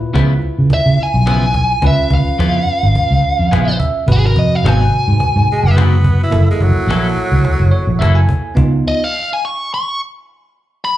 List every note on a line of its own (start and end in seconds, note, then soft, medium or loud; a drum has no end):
0.00 0.10 A#2 medium
0.00 1.79 E4 medium
0.00 1.79 F4 medium
0.00 1.79 B4 medium
0.14 0.39 C#2 medium
0.14 0.32 C#3 medium
0.14 0.32 F3 medium
0.14 0.33 B3 medium
0.14 0.33 E4 medium
0.14 cajon slap medium
0.42 cajon slap soft
0.59 0.69 C#3 medium
0.70 1.00 E5 medium
0.70 cajon bass medium
0.86 0.97 C#3 medium
0.98 muted fingered electric bass stroke soft
0.98 cajon slap soft
1.03 1.83 G#5 medium
1.14 1.74 B1 medium
1.26 1.45 C#3 medium
1.26 1.45 F3 medium
1.26 1.45 B3 medium
1.26 1.45 E4 medium
1.26 cajon slap medium
1.54 cajon bass medium
1.82 1.96 C#2 medium
1.82 4.03 C#4 medium
1.82 4.04 F4 medium
1.82 4.04 B4 medium
1.82 cajon bass loud
1.87 2.12 E5 medium
2.10 2.24 C#2 medium
2.10 cajon bass medium
2.15 3.78 F5 medium
2.26 muted fingered electric bass stroke soft
2.38 2.63 F2 medium
2.38 2.57 C#3 medium
2.38 2.57 F3 medium
2.38 2.58 B3 medium
2.38 2.58 E4 medium
2.38 cajon slap medium
2.68 cajon slap soft
2.83 2.94 G#1 medium
2.95 cajon bass medium
2.95 cajon slap soft
3.11 3.22 C#2 medium
3.23 cajon slap soft
3.39 3.50 F2 medium
3.39 cajon slap soft
3.51 3.76 A#1 medium
3.51 3.70 C#3 medium
3.51 3.70 F3 medium
3.51 3.70 B3 medium
3.51 3.70 E4 medium
3.51 3.78 G#5 medium
3.51 cajon slap loud
3.79 4.06 E5 medium
3.79 cajon bass medium
4.06 4.32 G#1 medium
4.06 6.28 C3 medium
4.06 6.28 F#4 soft
4.06 6.29 B4 medium
4.06 cajon bass loud
4.12 4.25 G#4 medium
4.26 4.37 A#4 medium
4.36 4.60 F2 medium
4.36 4.55 D#5 medium
4.36 cajon bass medium
4.55 4.68 F5 medium
4.64 4.88 G#1 medium
4.64 4.82 G#2 medium
4.64 4.83 F#3 medium
4.64 4.83 B3 medium
4.64 4.83 C4 medium
4.64 5.75 G#5 loud
4.64 cajon slap loud
4.92 cajon slap soft
5.08 5.18 G#2 medium
5.20 cajon bass medium
5.36 5.47 G#2 medium
5.48 muted fingered electric bass stroke soft
5.48 cajon slap soft
5.52 5.65 G#3 medium
5.63 6.23 F#1 medium
5.63 6.20 B3 medium
5.76 5.94 G#2 medium
5.76 5.95 F#3 medium
5.76 5.95 B3 medium
5.76 5.95 C4 medium
5.76 cajon slap loud
6.04 cajon bass medium
6.22 6.49 E4 medium
6.22 cajon slap soft
6.31 6.46 F#1 loud
6.31 8.52 A#3 medium
6.31 8.53 E4 medium
6.31 8.53 A4 medium
6.31 cajon bass loud
6.51 6.64 G#3 medium
6.60 6.74 F#1 medium
6.60 8.26 F#3 loud
6.60 cajon bass medium
6.87 7.12 A#1 medium
6.87 7.07 F#3 medium
6.87 7.07 A#3 medium
6.87 7.07 E4 medium
6.87 7.08 A4 medium
6.87 cajon slap loud
7.17 cajon slap soft
7.32 7.43 C#2 medium
7.45 cajon bass medium
7.45 cajon slap soft
7.60 7.71 F#1 medium
7.71 7.98 C#5 medium
7.87 7.98 A#1 medium
7.99 8.24 F#1 loud
7.99 8.19 F#3 medium
7.99 8.19 A#3 medium
7.99 8.19 E4 loud
7.99 8.19 A4 medium
7.99 8.14 E5 medium
7.99 cajon slap loud
8.15 8.53 G#5 medium
8.29 cajon bass medium
8.55 8.81 C#2 medium
8.55 9.01 B3 medium
8.55 9.02 D#4 medium
8.55 9.02 F4 medium
8.55 cajon bass loud
8.88 9.04 D#5 loud
9.04 9.30 F5 medium
9.33 9.43 G#5 medium
9.45 9.70 C#6 medium
9.74 9.99 C#6 loud
10.85 10.97 B5 loud